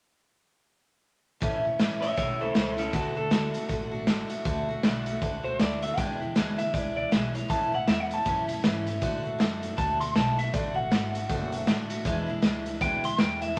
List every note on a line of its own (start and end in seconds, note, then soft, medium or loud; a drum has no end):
1.40 1.69 A1 medium
1.40 1.64 A2 medium
1.40 1.65 E3 medium
1.40 1.65 A3 loud
1.40 1.66 C#4 medium
1.40 1.64 E4 medium
1.40 kick loud
1.40 closed hi-hat medium
1.65 1.78 A3 medium
1.65 1.79 C#4 soft
1.65 1.80 E4 medium
1.79 2.13 A1 medium
1.79 2.02 A2 medium
1.79 2.03 E3 medium
1.79 2.03 A3 medium
1.79 2.02 C#4 medium
1.79 2.00 E4 loud
1.79 snare loud
1.79 closed hi-hat medium
2.01 2.17 C#4 soft
2.01 2.18 E4 medium
2.01 2.16 C#5 medium
2.01 2.17 E5 medium
2.01 closed hi-hat medium
2.05 2.16 A3 soft
2.16 2.50 B1 medium
2.16 2.40 E3 medium
2.16 2.41 A3 medium
2.16 2.40 C#4 medium
2.16 2.38 E4 medium
2.16 2.39 C#5 medium
2.16 2.40 E5 medium
2.16 kick loud
2.16 closed hi-hat medium
2.40 2.55 A3 soft
2.40 2.55 C#4 medium
2.40 2.55 E4 medium
2.40 2.55 A4 medium
2.40 2.55 C5 medium
2.54 2.89 C#2 medium
2.54 2.78 A2 medium
2.54 2.78 E3 medium
2.54 2.79 A3 medium
2.54 2.78 C#4 medium
2.54 2.76 E4 medium
2.54 2.77 A4 medium
2.54 2.79 C5 medium
2.54 snare loud
2.54 closed hi-hat medium
2.77 2.93 A3 soft
2.77 2.93 C#4 medium
2.77 2.94 C#4 soft
2.77 2.93 E4 medium
2.77 2.94 A4 medium
2.77 closed hi-hat medium
2.93 3.47 D2 medium
2.93 3.17 D3 medium
2.93 3.17 A3 medium
2.93 3.16 D4 medium
2.93 3.15 F#4 medium
2.93 3.14 F#4 medium
2.93 3.16 A4 medium
2.93 kick loud
2.93 closed hi-hat medium
3.15 3.30 A3 soft
3.15 3.31 D4 soft
3.15 3.31 F#4 medium
3.15 4.28 A4 medium
3.31 3.54 D3 medium
3.31 3.55 A3 medium
3.31 3.54 D4 medium
3.31 3.52 F#4 medium
3.31 snare loud
3.31 closed hi-hat medium
3.54 3.70 A3 soft
3.54 3.70 D4 soft
3.54 3.70 F#4 medium
3.54 closed hi-hat medium
3.68 4.23 A1 medium
3.68 3.92 D3 medium
3.68 3.93 A3 medium
3.68 3.92 D4 medium
3.68 3.90 F#4 medium
3.68 kick loud
3.68 closed hi-hat medium
3.91 4.07 A3 medium
3.91 4.08 D4 medium
3.91 4.08 F#4 medium
4.07 4.31 D3 medium
4.07 4.31 A3 medium
4.07 4.30 D4 medium
4.07 4.28 F#4 loud
4.07 snare loud
4.07 closed hi-hat medium
4.29 4.45 A3 soft
4.29 4.45 D4 medium
4.29 4.45 F#4 medium
4.29 closed hi-hat medium
4.45 4.72 D2 medium
4.45 4.68 D3 loud
4.45 4.69 A3 loud
4.45 4.69 D4 medium
4.45 4.67 F#4 loud
4.45 kick loud
4.45 closed hi-hat medium
4.69 4.83 A3 medium
4.69 4.84 D4 medium
4.69 4.84 F#4 medium
4.83 5.17 B1 medium
4.83 5.06 D3 medium
4.83 5.07 A3 medium
4.83 5.07 D4 medium
4.83 5.05 F#4 medium
4.83 snare loud
4.83 closed hi-hat medium
5.06 5.23 D4 medium
5.06 5.22 F#4 medium
5.06 closed hi-hat medium
5.10 5.21 A3 medium
5.21 5.55 C#2 medium
5.21 5.45 D3 medium
5.21 5.45 A3 medium
5.21 5.44 D4 medium
5.21 5.42 F#4 medium
5.21 kick loud
5.21 closed hi-hat medium
5.43 5.59 D4 medium
5.43 5.59 F#4 medium
5.43 5.59 C5 loud
5.48 5.59 A3 soft
5.59 5.93 D2 medium
5.59 5.82 D3 medium
5.59 5.83 A3 medium
5.59 5.82 D4 medium
5.59 5.81 F#4 medium
5.59 5.82 D5 medium
5.59 snare loud
5.59 closed hi-hat medium
5.82 5.98 A3 soft
5.82 5.98 D4 medium
5.82 5.98 F#4 medium
5.82 5.97 E5 medium
5.82 closed hi-hat medium
5.97 6.20 E2 medium
5.97 6.25 E2 medium
5.97 6.21 B2 medium
5.97 6.21 E3 medium
5.97 6.21 G#3 medium
5.97 6.20 D4 medium
5.97 6.19 E4 medium
5.97 6.57 G5 medium
5.97 kick loud
5.97 closed hi-hat medium
6.20 6.35 E3 soft
6.20 6.35 G#3 medium
6.20 6.36 D4 medium
6.20 6.36 E4 medium
6.35 6.68 D2 medium
6.35 6.58 E2 medium
6.35 6.59 B2 medium
6.35 6.59 E3 medium
6.35 6.58 G#3 medium
6.35 6.58 D4 medium
6.35 6.56 E4 medium
6.35 snare loud
6.35 closed hi-hat medium
6.57 6.73 G#3 soft
6.57 6.74 D4 soft
6.57 6.73 E4 medium
6.57 6.73 E5 medium
6.57 closed hi-hat medium
6.61 6.72 E3 soft
6.73 7.06 C#2 medium
6.73 6.96 E3 medium
6.73 6.96 G#3 medium
6.73 6.95 D4 medium
6.73 6.94 E4 medium
6.73 6.96 D5 medium
6.73 kick loud
6.73 closed hi-hat medium
6.95 7.11 E3 soft
6.95 7.11 G#3 soft
6.95 7.12 D4 soft
6.95 7.11 E4 soft
6.95 7.12 D5 medium
7.11 7.45 B1 medium
7.11 7.34 E2 medium
7.11 7.35 B2 medium
7.11 7.35 E3 medium
7.11 7.34 G#3 medium
7.11 7.33 D4 medium
7.11 7.32 E4 medium
7.11 7.34 E5 medium
7.11 snare loud
7.11 closed hi-hat medium
7.33 7.48 E3 soft
7.33 7.50 G#3 soft
7.33 7.50 D4 soft
7.33 7.49 E4 medium
7.33 7.49 C#5 loud
7.33 closed hi-hat medium
7.49 7.87 A1 medium
7.49 7.72 A2 medium
7.49 7.73 E3 medium
7.49 7.73 A3 medium
7.49 7.72 C#4 medium
7.49 7.71 E4 medium
7.49 7.74 A5 medium
7.49 kick loud
7.49 closed hi-hat medium
7.72 7.88 A3 soft
7.72 7.89 C#4 soft
7.72 7.88 E4 medium
7.72 7.87 F#5 medium
7.87 8.25 E2 medium
7.87 8.11 E3 medium
7.87 8.11 A3 medium
7.87 8.10 C#4 medium
7.87 8.08 E4 medium
7.87 8.00 E5 medium
7.87 snare loud
7.87 closed hi-hat medium
8.00 8.13 F#5 medium
8.09 8.25 A3 soft
8.09 8.26 C#4 soft
8.09 8.25 E4 medium
8.09 closed hi-hat medium
8.14 8.87 A5 medium
8.25 8.63 F#2 medium
8.25 8.48 A2 medium
8.25 8.49 E3 medium
8.25 8.49 A3 medium
8.25 8.48 C#4 medium
8.25 8.46 E4 medium
8.25 kick loud
8.25 closed hi-hat medium
8.47 8.64 A3 soft
8.47 8.64 C#4 soft
8.47 8.63 E4 medium
8.47 closed hi-hat medium
8.63 9.01 G#2 loud
8.63 8.86 E3 medium
8.63 8.87 A3 medium
8.63 8.86 C#4 medium
8.63 8.85 E4 medium
8.63 snare loud
8.63 closed hi-hat medium
8.86 9.01 A3 soft
8.86 9.03 C#4 medium
8.86 9.02 E4 medium
8.86 closed hi-hat medium
9.01 9.39 A2 medium
9.01 9.24 D3 medium
9.01 9.25 A3 medium
9.01 9.24 D4 loud
9.01 9.22 F#4 medium
9.01 kick loud
9.01 closed hi-hat medium
9.23 9.39 A3 medium
9.23 9.40 D4 medium
9.23 9.39 F#4 medium
9.39 9.77 F#2 loud
9.39 9.62 D3 medium
9.39 9.63 A3 medium
9.39 9.63 D4 medium
9.39 9.61 F#4 medium
9.39 snare loud
9.39 closed hi-hat medium
9.62 9.76 A3 soft
9.62 9.77 D4 medium
9.62 9.78 F#4 medium
9.62 closed hi-hat medium
9.77 10.15 D2 medium
9.77 10.00 D3 medium
9.77 10.00 A3 medium
9.77 10.01 D4 medium
9.77 9.99 F#4 medium
9.77 10.00 A5 loud
9.77 kick loud
9.77 closed hi-hat medium
10.00 10.15 A3 soft
10.00 10.17 D4 medium
10.00 10.16 F#4 medium
10.00 10.15 C6 medium
10.00 closed hi-hat medium
10.16 10.53 B1 loud
10.16 10.39 D3 medium
10.16 10.39 A3 medium
10.16 10.38 D4 medium
10.16 10.36 F#4 medium
10.16 10.38 A5 medium
10.16 snare loud
10.16 closed hi-hat medium
10.37 10.53 A3 soft
10.37 10.54 D4 medium
10.37 10.53 F#4 medium
10.37 10.53 E5 loud
10.37 closed hi-hat medium
10.53 10.91 A1 medium
10.53 10.77 D3 medium
10.53 10.77 A3 medium
10.53 10.75 D4 medium
10.53 10.73 F#4 medium
10.53 10.76 D5 medium
10.53 kick loud
10.53 closed hi-hat medium
10.74 10.91 A3 soft
10.74 10.91 D4 soft
10.74 10.91 F#4 medium
10.74 11.86 F#5 medium
10.91 11.29 G#1 loud
10.91 11.14 D3 medium
10.91 11.15 A3 medium
10.91 11.14 D4 medium
10.91 11.12 F#4 medium
10.91 snare loud
10.91 closed hi-hat medium
11.13 11.29 A3 soft
11.13 11.30 D4 soft
11.13 11.29 F#4 medium
11.13 closed hi-hat medium
11.29 11.67 F#1 medium
11.29 11.52 D3 medium
11.29 11.53 A3 medium
11.29 11.53 D4 medium
11.29 11.51 F#4 loud
11.29 kick loud
11.29 closed hi-hat medium
11.52 11.67 A3 medium
11.52 11.68 D4 medium
11.52 11.67 F#4 medium
11.52 closed hi-hat medium
11.67 12.05 A1 loud
11.67 11.90 D3 medium
11.67 11.91 A3 medium
11.67 11.91 D4 medium
11.67 11.89 F#4 medium
11.67 snare loud
11.67 closed hi-hat medium
11.90 12.06 A3 medium
11.90 12.06 D4 medium
11.90 12.05 F#4 medium
11.90 closed hi-hat medium
12.05 12.28 E2 medium
12.05 12.42 E2 medium
12.05 12.28 B2 loud
12.05 12.29 E3 loud
12.05 12.28 G#3 loud
12.05 12.27 D4 loud
12.05 12.25 E4 loud
12.05 kick loud
12.05 closed hi-hat medium
12.27 12.41 E3 soft
12.27 12.42 G#3 medium
12.27 12.43 D4 medium
12.27 12.43 E4 medium
12.42 12.80 C#2 medium
12.42 12.65 E3 medium
12.42 12.66 G#3 medium
12.42 12.65 D4 medium
12.42 12.64 E4 medium
12.42 snare loud
12.42 closed hi-hat medium
12.66 12.81 E3 medium
12.66 12.81 G#3 medium
12.66 12.81 D4 medium
12.66 12.81 E4 medium
12.66 closed hi-hat medium
12.81 13.18 D2 medium
12.81 13.04 E2 medium
12.81 13.04 B2 medium
12.81 13.04 E3 medium
12.81 13.04 G#3 medium
12.81 13.04 D4 medium
12.81 13.02 E4 medium
12.81 13.03 G5 loud
12.81 kick loud
12.81 closed hi-hat medium
13.04 13.17 E3 soft
13.04 13.18 G#3 soft
13.04 13.19 D4 medium
13.04 13.19 E4 soft
13.04 13.19 C6 medium
13.04 closed hi-hat medium
13.18 13.56 E2 loud
13.18 13.41 E3 medium
13.18 13.42 G#3 medium
13.18 13.41 D4 medium
13.18 13.40 E4 medium
13.18 13.41 G5 medium
13.18 snare loud
13.18 closed hi-hat medium
13.42 13.55 E3 soft
13.42 13.57 G#3 soft
13.42 13.57 D4 medium
13.42 13.57 E4 soft
13.42 13.57 E5 medium
13.42 closed hi-hat medium
13.56 13.59 A2 medium